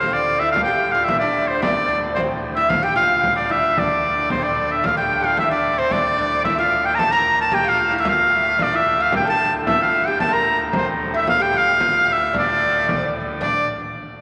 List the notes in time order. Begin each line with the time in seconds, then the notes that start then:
Already playing: D2 A2
0.00 C4 C5, frame drum
0.13 D5
0.39 E4 E5
0.52 F4 F5
0.56 D2 A2, frame drum
0.64 G5
0.68 G4
0.92 F4 F5
1.04 E5
1.08 E4, frame drum
1.19 D4 D5
1.36 frame drum
1.47 C5
1.62 D4 D5 E5, frame drum
1.66 D5
1.89 D4
2.15 C4 C5, frame drum
2.43 frame drum
2.56 E4 E5
2.69 F4 F5, frame drum
2.83 G4 G5
2.96 F4 F5
3.24 frame drum
3.35 D4 D5
3.49 E4 E5, frame drum
3.76 D4 D5, frame drum
4.04 frame drum
4.30 C4 C5, frame drum
4.42 D4 D5
4.57 frame drum
4.70 E5
4.84 D2 A2 F4 F5, frame drum
4.97 G4 G5
5.21 F4 G4
5.25 F5
5.37 E4 E5, frame drum
5.51 D4 D5
5.64 frame drum
5.78 C4 C5
5.91 D4 D5, frame drum
6.19 D4
6.44 E4 E5, frame drum
6.58 F4 F5
6.84 G5
6.95 A5 A#5, frame drum
6.99 A4
7.11 A#4 A#5
7.37 A5
7.51 G4 G5, frame drum
7.64 F4 F5
7.69 F5
7.78 frame drum
7.91 E4 E5
7.96 E4 E5 F5
8.00 E5 F5
8.05 F4, frame drum
8.09 F5
8.31 F5
8.35 E5
8.58 D4 D5, frame drum
8.63 D5
8.71 E4 E5
8.76 E5
8.86 frame drum
8.98 F4 F5
9.02 F5
9.12 D2 A2 G4 G5, frame drum
9.25 A4 A5
9.29 A5
9.65 E4 E5, frame drum
9.81 F4 F5
9.94 frame drum
10.06 G4 G5
10.19 A4 A5, frame drum
10.31 A#4 A#5 C6
10.35 A#5
10.73 C4 C5, frame drum
11.01 frame drum
11.13 E4 E5
11.27 F4 F5, frame drum
11.40 G4 G5
11.53 F4 F5
11.57 F5
11.80 F4 F5, frame drum
12.06 E5, frame drum
12.13 E5
12.33 D4 D5, frame drum
12.39 D5
12.79 E5
12.88 D5, frame drum
12.98 C5
13.06 D5
13.41 D4 D5, frame drum